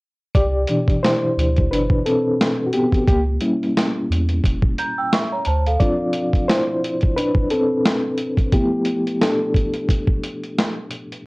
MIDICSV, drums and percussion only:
0, 0, Header, 1, 2, 480
1, 0, Start_track
1, 0, Key_signature, 0, "major"
1, 0, Tempo, 681818
1, 244, Time_signature, 4, 2, 24, 8
1, 7927, End_track
2, 0, Start_track
2, 0, Title_t, "Drums"
2, 245, Note_on_c, 9, 36, 107
2, 249, Note_on_c, 9, 42, 74
2, 316, Note_off_c, 9, 36, 0
2, 319, Note_off_c, 9, 42, 0
2, 476, Note_on_c, 9, 42, 66
2, 546, Note_off_c, 9, 42, 0
2, 619, Note_on_c, 9, 36, 80
2, 632, Note_on_c, 9, 42, 33
2, 689, Note_off_c, 9, 36, 0
2, 703, Note_off_c, 9, 42, 0
2, 737, Note_on_c, 9, 38, 100
2, 747, Note_on_c, 9, 42, 75
2, 807, Note_off_c, 9, 38, 0
2, 818, Note_off_c, 9, 42, 0
2, 979, Note_on_c, 9, 42, 62
2, 1049, Note_off_c, 9, 42, 0
2, 1101, Note_on_c, 9, 42, 36
2, 1112, Note_on_c, 9, 36, 95
2, 1172, Note_off_c, 9, 42, 0
2, 1183, Note_off_c, 9, 36, 0
2, 1218, Note_on_c, 9, 42, 85
2, 1289, Note_off_c, 9, 42, 0
2, 1336, Note_on_c, 9, 36, 90
2, 1406, Note_off_c, 9, 36, 0
2, 1451, Note_on_c, 9, 42, 65
2, 1521, Note_off_c, 9, 42, 0
2, 1696, Note_on_c, 9, 38, 100
2, 1698, Note_on_c, 9, 42, 73
2, 1766, Note_off_c, 9, 38, 0
2, 1768, Note_off_c, 9, 42, 0
2, 1921, Note_on_c, 9, 42, 63
2, 1991, Note_off_c, 9, 42, 0
2, 2059, Note_on_c, 9, 36, 82
2, 2072, Note_on_c, 9, 42, 33
2, 2129, Note_off_c, 9, 36, 0
2, 2142, Note_off_c, 9, 42, 0
2, 2166, Note_on_c, 9, 36, 109
2, 2170, Note_on_c, 9, 42, 74
2, 2236, Note_off_c, 9, 36, 0
2, 2240, Note_off_c, 9, 42, 0
2, 2398, Note_on_c, 9, 42, 69
2, 2469, Note_off_c, 9, 42, 0
2, 2556, Note_on_c, 9, 42, 29
2, 2626, Note_off_c, 9, 42, 0
2, 2655, Note_on_c, 9, 38, 98
2, 2665, Note_on_c, 9, 42, 78
2, 2725, Note_off_c, 9, 38, 0
2, 2736, Note_off_c, 9, 42, 0
2, 2899, Note_on_c, 9, 42, 61
2, 2969, Note_off_c, 9, 42, 0
2, 3018, Note_on_c, 9, 42, 32
2, 3088, Note_off_c, 9, 42, 0
2, 3124, Note_on_c, 9, 36, 87
2, 3135, Note_on_c, 9, 42, 79
2, 3194, Note_off_c, 9, 36, 0
2, 3206, Note_off_c, 9, 42, 0
2, 3255, Note_on_c, 9, 36, 91
2, 3325, Note_off_c, 9, 36, 0
2, 3367, Note_on_c, 9, 42, 68
2, 3437, Note_off_c, 9, 42, 0
2, 3609, Note_on_c, 9, 38, 104
2, 3611, Note_on_c, 9, 42, 72
2, 3680, Note_off_c, 9, 38, 0
2, 3682, Note_off_c, 9, 42, 0
2, 3836, Note_on_c, 9, 42, 58
2, 3906, Note_off_c, 9, 42, 0
2, 3987, Note_on_c, 9, 42, 34
2, 4058, Note_off_c, 9, 42, 0
2, 4083, Note_on_c, 9, 36, 107
2, 4085, Note_on_c, 9, 42, 69
2, 4153, Note_off_c, 9, 36, 0
2, 4155, Note_off_c, 9, 42, 0
2, 4314, Note_on_c, 9, 42, 66
2, 4384, Note_off_c, 9, 42, 0
2, 4457, Note_on_c, 9, 36, 81
2, 4469, Note_on_c, 9, 42, 30
2, 4527, Note_off_c, 9, 36, 0
2, 4540, Note_off_c, 9, 42, 0
2, 4572, Note_on_c, 9, 38, 97
2, 4582, Note_on_c, 9, 42, 73
2, 4642, Note_off_c, 9, 38, 0
2, 4653, Note_off_c, 9, 42, 0
2, 4818, Note_on_c, 9, 42, 61
2, 4888, Note_off_c, 9, 42, 0
2, 4934, Note_on_c, 9, 42, 36
2, 4949, Note_on_c, 9, 36, 92
2, 5005, Note_off_c, 9, 42, 0
2, 5019, Note_off_c, 9, 36, 0
2, 5053, Note_on_c, 9, 42, 82
2, 5124, Note_off_c, 9, 42, 0
2, 5173, Note_on_c, 9, 36, 89
2, 5243, Note_off_c, 9, 36, 0
2, 5282, Note_on_c, 9, 42, 66
2, 5353, Note_off_c, 9, 42, 0
2, 5530, Note_on_c, 9, 38, 109
2, 5532, Note_on_c, 9, 42, 69
2, 5600, Note_off_c, 9, 38, 0
2, 5603, Note_off_c, 9, 42, 0
2, 5756, Note_on_c, 9, 42, 61
2, 5826, Note_off_c, 9, 42, 0
2, 5895, Note_on_c, 9, 36, 88
2, 5903, Note_on_c, 9, 42, 32
2, 5965, Note_off_c, 9, 36, 0
2, 5973, Note_off_c, 9, 42, 0
2, 6001, Note_on_c, 9, 36, 104
2, 6001, Note_on_c, 9, 42, 77
2, 6071, Note_off_c, 9, 42, 0
2, 6072, Note_off_c, 9, 36, 0
2, 6232, Note_on_c, 9, 42, 66
2, 6302, Note_off_c, 9, 42, 0
2, 6387, Note_on_c, 9, 42, 33
2, 6457, Note_off_c, 9, 42, 0
2, 6489, Note_on_c, 9, 38, 92
2, 6499, Note_on_c, 9, 42, 78
2, 6559, Note_off_c, 9, 38, 0
2, 6570, Note_off_c, 9, 42, 0
2, 6720, Note_on_c, 9, 36, 100
2, 6734, Note_on_c, 9, 42, 61
2, 6790, Note_off_c, 9, 36, 0
2, 6804, Note_off_c, 9, 42, 0
2, 6855, Note_on_c, 9, 42, 34
2, 6926, Note_off_c, 9, 42, 0
2, 6962, Note_on_c, 9, 36, 90
2, 6972, Note_on_c, 9, 42, 85
2, 7032, Note_off_c, 9, 36, 0
2, 7042, Note_off_c, 9, 42, 0
2, 7093, Note_on_c, 9, 36, 92
2, 7163, Note_off_c, 9, 36, 0
2, 7206, Note_on_c, 9, 42, 63
2, 7277, Note_off_c, 9, 42, 0
2, 7347, Note_on_c, 9, 42, 32
2, 7417, Note_off_c, 9, 42, 0
2, 7452, Note_on_c, 9, 38, 101
2, 7454, Note_on_c, 9, 42, 69
2, 7522, Note_off_c, 9, 38, 0
2, 7524, Note_off_c, 9, 42, 0
2, 7678, Note_on_c, 9, 42, 59
2, 7748, Note_off_c, 9, 42, 0
2, 7829, Note_on_c, 9, 42, 33
2, 7899, Note_off_c, 9, 42, 0
2, 7927, End_track
0, 0, End_of_file